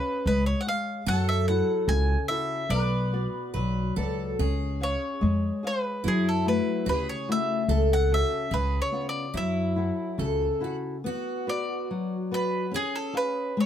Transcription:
Already playing: nylon-string guitar C#4 G#4 C#5 F5, twelve-string acoustic guitar G#4, mandolin B4
0.26 upright bass C#2, nylon-string guitar G#3, mandolin B4
0.46 mandolin C#5
0.61 mandolin F#5
0.67 nylon-string guitar G#4 C#5 F5, mandolin F5
1.06 upright bass F#2, nylon-string guitar F#3, twelve-string acoustic guitar A4, mandolin F#5
1.29 mandolin E5
1.48 nylon-string guitar E4 F#4 A4, mandolin F#5
1.88 upright bass C#2, nylon-string guitar C#3, mandolin G#5
2.28 nylon-string guitar E4 F#4 A4, mandolin E5
2.70 upright bass B1, nylon-string guitar B3, twelve-string acoustic guitar B4, mandolin D5
3.13 nylon-string guitar F#4 B4 D5
3.54 upright bass B1, nylon-string guitar F#3, twelve-string acoustic guitar B4
3.96 upright bass C#2, nylon-string guitar F#4 B4 D5, twelve-string acoustic guitar A4
4.39 upright bass C#2, nylon-string guitar C#4, twelve-string acoustic guitar G#4
4.80 nylon-string guitar G#4 C#5 F5, mandolin C#5
5.21 upright bass F2, nylon-string guitar G#3
5.63 nylon-string guitar G#4 C#5 F5, mandolin B4
6.04 upright bass F#2, nylon-string guitar F#3, twelve-string acoustic guitar E4
6.08 mandolin G#4
6.29 mandolin A4
6.45 nylon-string guitar A3 E4 F#4, mandolin B4
6.85 upright bass D2, nylon-string guitar C#3, twelve-string acoustic guitar G#4
6.89 mandolin B4
7.09 mandolin C#5
7.28 nylon-string guitar A3 E4 F#4, mandolin E5
7.68 upright bass C#2, nylon-string guitar C#3, twelve-string acoustic guitar A4
7.93 mandolin F#5
8.11 nylon-string guitar C#4 F#4 A4, mandolin E5
8.51 upright bass C#2, nylon-string guitar C#3, twelve-string acoustic guitar G#4, mandolin B4
8.82 mandolin C#5
8.92 nylon-string guitar B3 C#4 F4
9.09 mandolin D5
9.34 upright bass F#2, nylon-string guitar F#3, twelve-string acoustic guitar E4, mandolin E5
9.76 nylon-string guitar E4 F#4 A4
10.18 upright bass C#2, nylon-string guitar C#3, twelve-string acoustic guitar A4
10.61 nylon-string guitar E4 F#4 A4, twelve-string acoustic guitar F#4
11.04 nylon-string guitar B3, twelve-string acoustic guitar F#4
11.47 nylon-string guitar F#4 B4 D5, mandolin D5
11.91 nylon-string guitar F#3
12.31 nylon-string guitar F#4 B4 D5, mandolin B4
12.71 nylon-string guitar C#4, twelve-string acoustic guitar G#4
12.76 mandolin G#4
12.96 mandolin A4
13.13 nylon-string guitar G#4 C#5 F5, mandolin B4
13.57 nylon-string guitar G#3, mandolin C#5

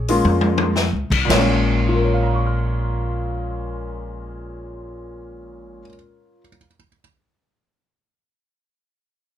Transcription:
Already playing: upright bass A#1, grand piano G#4 C#5
0.08 grand piano G#3 A#3 C#4 F4, open hi-hat
0.24 upright bass F2, high tom
0.41 high tom
0.58 high tom
0.76 snare
0.93 upright bass C#2
1.10 upright bass C2, kick, crash
1.25 grand piano A#2
1.29 upright bass A#1, grand piano G#3 A#3 C#5, snare, crash
1.38 grand piano C#4
1.89 grand piano F4
1.96 grand piano A#4
2.04 grand piano C#5
2.14 grand piano F5
2.23 grand piano A#5
2.34 grand piano C#6
2.46 grand piano F6

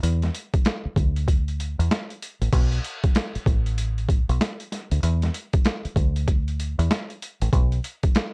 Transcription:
0.03 fingered electric bass E2, closed hi-hat
0.22 snare, closed hi-hat
0.34 closed hi-hat
0.54 kick, closed hi-hat
0.65 snare, closed hi-hat
0.85 muted fingered electric bass stroke
0.96 fingered electric bass D2, kick, closed hi-hat
1.16 closed hi-hat
1.28 kick, closed hi-hat
1.48 closed hi-hat
1.60 closed hi-hat
1.79 fingered electric bass E2, closed hi-hat
1.91 snare, closed hi-hat
2.10 closed hi-hat
2.22 closed hi-hat
2.41 fingered electric bass A1, closed hi-hat
2.53 fingered electric bass B1, kick, closed hi-hat, crash
2.72 closed hi-hat
2.84 closed hi-hat
3.03 kick, closed hi-hat
3.15 snare, closed hi-hat
3.35 muted fingered electric bass stroke, closed hi-hat
3.46 fingered electric bass A1, kick, closed hi-hat
3.66 closed hi-hat
3.78 closed hi-hat
3.98 closed hi-hat
4.09 kick, closed hi-hat
4.29 fingered electric bass B1, closed hi-hat
4.41 snare, closed hi-hat
4.60 closed hi-hat
4.72 snare, closed hi-hat
4.92 fingered electric bass D2, closed hi-hat
5.03 fingered electric bass E2, closed hi-hat
5.22 snare, closed hi-hat
5.34 closed hi-hat
5.53 kick, closed hi-hat
5.65 snare, closed hi-hat
5.85 muted fingered electric bass stroke, closed hi-hat
5.96 fingered electric bass D2, kick, closed hi-hat
6.16 closed hi-hat
6.28 kick, closed hi-hat
6.48 closed hi-hat
6.60 closed hi-hat
6.79 fingered electric bass E2, closed hi-hat
6.91 snare, closed hi-hat
7.10 closed hi-hat
7.22 closed hi-hat
7.41 fingered electric bass A1, closed hi-hat
7.53 fingered electric bass B1, kick, closed hi-hat
7.72 closed hi-hat
7.84 closed hi-hat
8.03 kick, closed hi-hat
8.15 snare, closed hi-hat

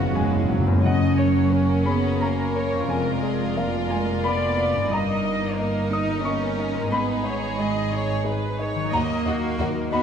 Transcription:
Already playing: double bass section F#1, harp F#2 C#3 D#3 B3 D#4 B4 C#5 D#5 C#6, grand piano F#2 C#3 B3 F#4 F5, french horn section D#3 B3, cello section F3, viola section B3, violin section C#4 F#4 F#5, oboe F#4, clarinet F#4, flute B4
0.06 timpani F#2
0.13 timpani F#2, viola section G#3, cello section G#3, grand piano F#4 G#5, harp B4
0.21 timpani F#2
0.29 timpani F#2, grand piano E4, harp C#5
0.36 timpani F#2
0.44 timpani F#2, grand piano F#4
0.49 timpani F#2, viola section F#3, harp B3
0.59 timpani F#2
0.66 harp F#2 C#3, timpani F#2, grand piano B3
0.75 timpani F#2, harp C#4
0.80 double bass section F#1, cello section F#3, violin section C#4, harp C#5, viola section D#5
0.85 grand piano F#2 F#5, violin section A#4 C#5
1.17 grand piano C#4 C#5, viola section C#5
1.52 grand piano A#3 C#4 C#5, viola section A#4
1.86 cello section B3, grand piano C#4 C#5 B5, viola section G#4
2.21 grand piano A#3 C#4 C#5 A#5, cello section A#3, viola section A#4
2.55 grand piano C#4 C#5, viola section C#5
2.71 harp F2
2.75 harp A#4
2.80 harp F4
2.84 double bass section F1, harp D5
2.89 grand piano F2 G#5, cello section G#3, violin section F4 D5, viola section A#4
3.22 grand piano F4 D5, viola section G#4
3.56 cello section F3, grand piano A#3 F4 D5 F5, viola section A#4
3.89 cello section G#3, grand piano F4 D5 G#5
4.23 grand piano A#2 F4 D5 B5, cello section B3, viola section D5
4.57 grand piano F4 D5
4.72 harp G2
4.77 harp A#3
4.81 harp D#4
4.86 double bass section G1, violin section D#4, harp D#5
4.90 grand piano G2 A#5, cello section A#3, violin section A#4 D#5, viola section D#5
5.24 grand piano D#4 D#5
5.57 grand piano A#3 D#4 D#5, viola section A#4
5.91 cello section D#4, grand piano D#4 D#5 D#6
6.24 grand piano A#3 D#4 D#5 C#6, viola section B3, cello section C#4
6.58 grand piano D#4 D#5, viola section A#4
6.74 harp G#2
6.79 harp G#3
6.83 harp D#4
6.88 harp D#5
6.92 double bass section G#1, grand piano G#2 B5, cello section B3, violin section G#4, viola section B4
7.23 grand piano D#4 D#5, viola section C#5
7.58 grand piano G#3 D#4 D#5 G#5, cello section G#3, viola section D#5
7.92 grand piano D#4 D#5, viola section C#5
8.24 grand piano G#3 D#4 D#5, viola section B4
8.59 grand piano D#4 D#5, viola section C#5
8.75 harp D#3
8.80 harp F#3
8.84 harp D#4
8.88 grand piano D#2, harp D#5, violin section D#5
8.93 double bass section D#2, cello section A#3, violin section D#4 F#4, viola section D#5, grand piano A#5
9.25 double bass section D#2, grand piano D#4 D#5, violin section D#4 F#4 D#5, viola section F#4
9.59 double bass section D#2, grand piano F#3 D#4 D#5, violin section D#4 F#4 D#5, viola section A#4
9.92 double bass section D#2, cello section B3, grand piano D#4 D#5 B5, violin section D#4 F#4 D#5, viola section F#4

